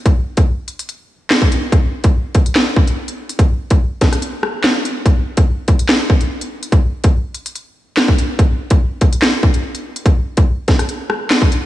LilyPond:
\new DrumStaff \with { instrumentName = "Drums" } \drummode { \time 4/4 \tempo 4 = 144 <hh bd>8. <hh bd>16 r8 hh16 hh16 hh4 <hc sn>16 bd16 hh8 | <hh bd>8. <hh bd>16 r8 <hh bd>16 hh16 <hc sn>8 bd16 hh16 r16 hh8 hh16 | <hh bd>8. <hh bd>16 r8 <hh bd sn>16 <hh ss>16 hh8 ss8 <hc sn>8 hh8 | <hh bd>8. <hh bd>16 r8 <hh bd>16 hh16 <hc sn>8 bd16 hh16 r16 hh8 hh16 |
<hh bd>8. <hh bd>16 r8 hh16 hh16 hh4 <hc sn>16 bd16 hh8 | <hh bd>8. <hh bd>16 r8 <hh bd>16 hh16 <hc sn>8 bd16 hh16 r16 hh8 hh16 | <hh bd>8. <hh bd>16 r8 <hh bd sn>16 <hh ss>16 hh8 ss8 <hc sn>16 bd16 hh8 | }